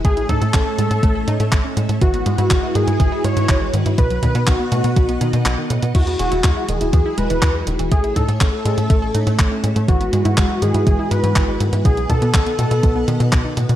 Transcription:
<<
  \new Staff \with { instrumentName = "Analog synth lead" } { \time 4/4 \key e \major \tempo 4 = 122 gis'8 a'8 a'2~ a'8 r8 | fis'8 fis'4 gis'8 gis'8 cis''4 r8 | b'8 b'8 fis'2~ fis'8 r8 | fis'8 fis'4 gis'8 gis'8 b'4 r8 |
gis'8 a'8 a'2~ a'8 r8 | fis'8 fis'4 gis'8 gis'8 b'4 r8 | gis'8 a'8 a'2~ a'8 r8 | }
  \new Staff \with { instrumentName = "String machine" } { \time 4/4 \key e \major <a a' cis'' e''>1 | <gis e' fis' b'>1 | <b dis'' fis''>1 | <e' fis' gis'>1 |
<a a' cis'' e''>1 | <gis e' fis' b'>1 | <b dis'' fis''>1 | }
  \new Staff \with { instrumentName = "Synth arpeggio sound" } { \clef bass \time 4/4 \key e \major a16 e'16 dis'16 a'16 cis'16 a'16 gis16 a'16 a16 a'16 dis'16 a16 a16 cis'16 gis16 a'16 | e16 b16 gis16 e'16 gis16 e'16 dis16 e'16 e16 e'16 gis16 e16 e16 gis16 dis16 e'16 | b,16 fis16 dis16 b16 dis16 b16 a,16 b16 b,16 b16 dis16 b,16 b,16 dis16 a,16 b16 | e16 b16 gis16 e'16 gis16 e'16 dis16 e'16 e16 e'16 gis16 e16 e16 gis16 dis16 e16 |
a16 e'16 dis'16 a'16 cis'16 a'16 gis16 a'16 a16 a'16 dis'16 a16 a16 cis'16 gis16 a16 | e16 b16 gis16 e'16 gis16 e'16 dis16 e'16 e16 e'16 gis16 e16 e16 gis16 dis16 e16 | b,16 fis16 dis16 b16 dis16 b16 a,16 b16 b,16 b16 dis16 b,16 b,16 dis16 a,16 b,16 | }
  \new Staff \with { instrumentName = "Analog synth bass" } { \clef bass \time 4/4 \key e \major a,,8 a,16 a,16 a,,16 r16 a,16 a,16 a,,8 a,16 a,16 a,,16 r16 a,16 a,16 | gis,,8 gis,16 gis,16 gis,,16 r16 gis,16 gis,16 gis,,16 r16 gis,16 gis,16 gis,,8 gis,16 gis,16 | b,,8 b,16 b,16 b,,16 r16 b,16 b,16 b,,8 b,16 b,16 b,,16 r16 b,16 b,16 | e,8 e,,16 e,,16 e,16 r16 e,,16 e,,16 e,16 r16 e,,16 e,,16 e,8 e,,16 e,,16 |
a,,8 a,16 a,16 a,,16 r16 a,16 a,16 a,,8 a,16 a,16 a,,16 r16 a,16 a,16 | gis,,8 gis,16 gis,16 gis,,16 r16 gis,16 gis,16 gis,,16 r16 gis,16 gis,16 gis,,8 gis,16 gis,16 | b,,8 b,16 b,16 b,,16 r16 b,16 b,16 b,,8 b,16 b,16 b,,16 r16 b,16 b,16 | }
  \new DrumStaff \with { instrumentName = "Drums" } \drummode { \time 4/4 <hh bd>16 hh16 <hh bd>16 hh16 <hc hh bd>8 hh16 hh16 <hh bd>8 hh16 hh16 <hc hh bd>8 hh16 hh16 | <hh bd>16 hh16 hh16 hh16 <hc hh bd>8 hh16 hh16 <hh bd>8 hh16 hh16 <hc hh bd>8 hh16 hh16 | <hh bd>16 hh16 <hh bd>16 hh16 <hc hh bd>8 hh16 hh16 <hh bd>16 hh16 hh16 hh16 <hc hh>8 hh16 hh16 | <cymc hh bd>16 hh16 hh16 hh16 <hc hh bd>8 hh16 hh16 <hh bd>8 hh16 hh16 <hc hh bd>8 hh16 hh16 |
<hh bd>16 hh16 <hh bd>16 hh16 <hc hh bd>8 hh16 hh16 <hh bd>8 hh16 hh16 <hc hh bd>8 hh16 hh16 | <hh bd>16 hh16 hh16 hh16 <hc hh bd>8 hh16 hh16 <hh bd>8 hh16 hh16 <hc hh bd>8 hh16 hh16 | <hh bd>16 hh16 <hh bd>16 hh16 <hc hh bd>16 hh16 hh16 hh16 <hh bd>8 hh16 hh16 <hc hh bd>8 hh16 hh16 | }
>>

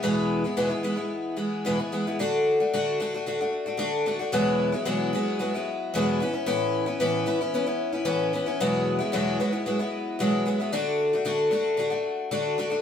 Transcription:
\new Staff \with { instrumentName = "Twelve-string acoustic guitar" } { \time 4/4 \key e \major \tempo 4 = 112 <e, b, e gis b e'>8. <e gis b e'>16 <e, b, e gis b e'>16 <e gis b e'>16 <e gis b e'>16 <e gis b e'>8. <e gis b e'>8 <e, b, e gis b e'>16 <e gis b e'>16 <e gis b e'>16 <e gis b e'>16 | \key d \lydian <d a d' fis'>8. <a d' fis'>16 <d a d' fis'>8 <d a d' fis'>16 <a d' fis'>16 <d a d' fis'>16 <a d' fis'>8 <a d' fis'>16 <d a d' fis'>8 <d a d' fis'>16 <a d' fis'>16 | <e, b, fis gis b e'>8. <fis gis b e'>16 <e, b, fis gis b e'>8 <fis gis b e'>8 <fis gis b e'>16 <fis gis b e'>8. <e, b, fis gis b e'>8 <e b cis' e'>16 <b cis' e'>16 | <a, e b cis' e'>8. <b cis' e'>16 <a, e b cis' e'>8 <e b cis' e'>16 <b cis' e'>16 <e b cis' e'>16 <b cis' e'>8 <b cis' e'>16 <a, e b cis' e'>8 <e b cis' e'>16 <b cis' e'>16 |
<e, b, fis gis b e'>8. <fis gis b e'>16 <e, b, fis gis b e'>8 <fis gis b e'>16 <fis gis b e'>16 <fis gis b e'>16 <fis gis b e'>8. <e, b, fis gis b e'>8 <fis gis b e'>16 <fis gis b e'>16 | <d a d' fis'>8. <a d' fis'>16 <d a d' fis'>8 <d a d' fis'>8 <d a d' fis'>16 <a d' fis'>8. <d a d' fis'>8 <d a d' fis'>16 <a d' fis'>16 | }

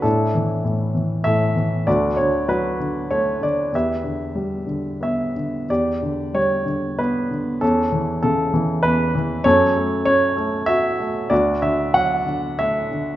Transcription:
<<
  \new Staff \with { instrumentName = "Grand piano" } { \time 3/4 \key e \dorian \tempo 4 = 96 << { a'2 e''4 | d''8 cis''8 b'4 cis''8 d''8 | e''2 e''4 | d''4 cis''4 b'4 |
a'4 a'4 b'4 | cis''4 cis''4 e''4 | d''8 e''8 fis''4 e''4 | } \\ { <d' e'>2 a'4 | <fis' a'>4 fis'4. r8 | <g' b'>2~ <g' b'>8 r8 | g'4. r4. |
cis'4. r4. | a'4. r4. | fis'4. r4. | } >> }
  \new Staff \with { instrumentName = "Grand piano" } { \clef bass \time 3/4 \key e \dorian a,8 e8 a,8 e8 a,8 e8 | d,8 d8 fis8 d8 a8 d8 | e,8 d8 g8 d8 b8 d8 | e,8 d8 g8 d8 b8 d8 |
e,8 e8 cis8 e8 e,8 e8 | fis,8 a8 cis'8 a8 fis'8 a8 | d,8 d8 fis8 d8 a8 d8 | }
>>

